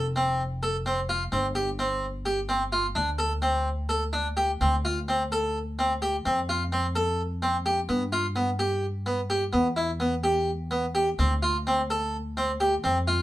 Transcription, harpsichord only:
0, 0, Header, 1, 2, 480
1, 0, Start_track
1, 0, Tempo, 469484
1, 1354, Time_signature, 7, 3, 24, 8
1, 13519, End_track
2, 0, Start_track
2, 0, Title_t, "Harpsichord"
2, 0, Program_c, 0, 6
2, 164, Note_on_c, 0, 60, 74
2, 415, Note_off_c, 0, 60, 0
2, 642, Note_on_c, 0, 69, 67
2, 767, Note_off_c, 0, 69, 0
2, 880, Note_on_c, 0, 60, 72
2, 1005, Note_off_c, 0, 60, 0
2, 1117, Note_on_c, 0, 65, 75
2, 1243, Note_off_c, 0, 65, 0
2, 1352, Note_on_c, 0, 60, 82
2, 1478, Note_off_c, 0, 60, 0
2, 1588, Note_on_c, 0, 67, 68
2, 1715, Note_off_c, 0, 67, 0
2, 1832, Note_on_c, 0, 60, 73
2, 2084, Note_off_c, 0, 60, 0
2, 2306, Note_on_c, 0, 67, 70
2, 2433, Note_off_c, 0, 67, 0
2, 2545, Note_on_c, 0, 60, 83
2, 2671, Note_off_c, 0, 60, 0
2, 2786, Note_on_c, 0, 65, 75
2, 2911, Note_off_c, 0, 65, 0
2, 3020, Note_on_c, 0, 62, 85
2, 3147, Note_off_c, 0, 62, 0
2, 3257, Note_on_c, 0, 69, 74
2, 3385, Note_off_c, 0, 69, 0
2, 3498, Note_on_c, 0, 60, 80
2, 3754, Note_off_c, 0, 60, 0
2, 3979, Note_on_c, 0, 69, 71
2, 4109, Note_off_c, 0, 69, 0
2, 4223, Note_on_c, 0, 62, 82
2, 4353, Note_off_c, 0, 62, 0
2, 4467, Note_on_c, 0, 67, 81
2, 4597, Note_off_c, 0, 67, 0
2, 4714, Note_on_c, 0, 60, 80
2, 4843, Note_off_c, 0, 60, 0
2, 4958, Note_on_c, 0, 65, 63
2, 5086, Note_off_c, 0, 65, 0
2, 5198, Note_on_c, 0, 60, 74
2, 5326, Note_off_c, 0, 60, 0
2, 5440, Note_on_c, 0, 69, 75
2, 5693, Note_off_c, 0, 69, 0
2, 5919, Note_on_c, 0, 60, 72
2, 6045, Note_off_c, 0, 60, 0
2, 6156, Note_on_c, 0, 67, 70
2, 6283, Note_off_c, 0, 67, 0
2, 6396, Note_on_c, 0, 60, 80
2, 6521, Note_off_c, 0, 60, 0
2, 6638, Note_on_c, 0, 65, 68
2, 6762, Note_off_c, 0, 65, 0
2, 6875, Note_on_c, 0, 60, 71
2, 7000, Note_off_c, 0, 60, 0
2, 7111, Note_on_c, 0, 69, 78
2, 7363, Note_off_c, 0, 69, 0
2, 7591, Note_on_c, 0, 60, 77
2, 7716, Note_off_c, 0, 60, 0
2, 7830, Note_on_c, 0, 67, 79
2, 7955, Note_off_c, 0, 67, 0
2, 8066, Note_on_c, 0, 59, 86
2, 8191, Note_off_c, 0, 59, 0
2, 8307, Note_on_c, 0, 65, 75
2, 8432, Note_off_c, 0, 65, 0
2, 8545, Note_on_c, 0, 59, 79
2, 8671, Note_off_c, 0, 59, 0
2, 8785, Note_on_c, 0, 67, 80
2, 9039, Note_off_c, 0, 67, 0
2, 9266, Note_on_c, 0, 59, 80
2, 9392, Note_off_c, 0, 59, 0
2, 9508, Note_on_c, 0, 67, 74
2, 9634, Note_off_c, 0, 67, 0
2, 9741, Note_on_c, 0, 59, 85
2, 9869, Note_off_c, 0, 59, 0
2, 9983, Note_on_c, 0, 64, 66
2, 10111, Note_off_c, 0, 64, 0
2, 10225, Note_on_c, 0, 59, 75
2, 10353, Note_off_c, 0, 59, 0
2, 10466, Note_on_c, 0, 67, 74
2, 10723, Note_off_c, 0, 67, 0
2, 10950, Note_on_c, 0, 59, 74
2, 11080, Note_off_c, 0, 59, 0
2, 11193, Note_on_c, 0, 67, 69
2, 11323, Note_off_c, 0, 67, 0
2, 11440, Note_on_c, 0, 60, 83
2, 11569, Note_off_c, 0, 60, 0
2, 11681, Note_on_c, 0, 65, 68
2, 11811, Note_off_c, 0, 65, 0
2, 11932, Note_on_c, 0, 60, 71
2, 12058, Note_off_c, 0, 60, 0
2, 12170, Note_on_c, 0, 69, 72
2, 12423, Note_off_c, 0, 69, 0
2, 12650, Note_on_c, 0, 60, 76
2, 12775, Note_off_c, 0, 60, 0
2, 12886, Note_on_c, 0, 67, 72
2, 13012, Note_off_c, 0, 67, 0
2, 13126, Note_on_c, 0, 60, 80
2, 13251, Note_off_c, 0, 60, 0
2, 13368, Note_on_c, 0, 65, 73
2, 13492, Note_off_c, 0, 65, 0
2, 13519, End_track
0, 0, End_of_file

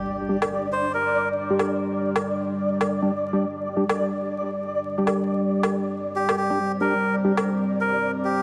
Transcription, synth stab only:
0, 0, Header, 1, 2, 480
1, 0, Start_track
1, 0, Key_signature, -2, "minor"
1, 0, Tempo, 434783
1, 79, Time_signature, 4, 2, 24, 8
1, 9301, End_track
2, 0, Start_track
2, 0, Title_t, "Synth stab"
2, 0, Program_c, 0, 62
2, 320, Note_on_c, 0, 55, 83
2, 320, Note_on_c, 0, 67, 87
2, 321, Note_on_c, 0, 62, 76
2, 403, Note_off_c, 0, 55, 0
2, 403, Note_off_c, 0, 62, 0
2, 403, Note_off_c, 0, 67, 0
2, 1660, Note_on_c, 0, 55, 75
2, 1660, Note_on_c, 0, 62, 72
2, 1660, Note_on_c, 0, 67, 89
2, 3306, Note_off_c, 0, 55, 0
2, 3306, Note_off_c, 0, 62, 0
2, 3306, Note_off_c, 0, 67, 0
2, 3339, Note_on_c, 0, 55, 83
2, 3339, Note_on_c, 0, 62, 73
2, 3339, Note_on_c, 0, 67, 86
2, 3432, Note_off_c, 0, 55, 0
2, 3432, Note_off_c, 0, 62, 0
2, 3432, Note_off_c, 0, 67, 0
2, 3676, Note_on_c, 0, 55, 93
2, 3677, Note_on_c, 0, 62, 84
2, 3677, Note_on_c, 0, 67, 106
2, 3810, Note_off_c, 0, 55, 0
2, 3810, Note_off_c, 0, 67, 0
2, 3811, Note_off_c, 0, 62, 0
2, 4157, Note_on_c, 0, 55, 80
2, 4157, Note_on_c, 0, 62, 79
2, 4157, Note_on_c, 0, 67, 95
2, 4241, Note_off_c, 0, 55, 0
2, 4241, Note_off_c, 0, 62, 0
2, 4241, Note_off_c, 0, 67, 0
2, 5498, Note_on_c, 0, 55, 79
2, 5498, Note_on_c, 0, 62, 72
2, 5498, Note_on_c, 0, 67, 87
2, 7145, Note_off_c, 0, 55, 0
2, 7145, Note_off_c, 0, 62, 0
2, 7145, Note_off_c, 0, 67, 0
2, 7179, Note_on_c, 0, 55, 84
2, 7179, Note_on_c, 0, 62, 77
2, 7179, Note_on_c, 0, 67, 90
2, 7272, Note_off_c, 0, 55, 0
2, 7272, Note_off_c, 0, 62, 0
2, 7272, Note_off_c, 0, 67, 0
2, 7517, Note_on_c, 0, 62, 86
2, 7517, Note_on_c, 0, 67, 103
2, 7518, Note_on_c, 0, 55, 97
2, 7651, Note_off_c, 0, 55, 0
2, 7651, Note_off_c, 0, 62, 0
2, 7651, Note_off_c, 0, 67, 0
2, 7998, Note_on_c, 0, 55, 81
2, 7998, Note_on_c, 0, 62, 76
2, 7999, Note_on_c, 0, 67, 91
2, 8081, Note_off_c, 0, 55, 0
2, 8081, Note_off_c, 0, 62, 0
2, 8082, Note_off_c, 0, 67, 0
2, 9301, End_track
0, 0, End_of_file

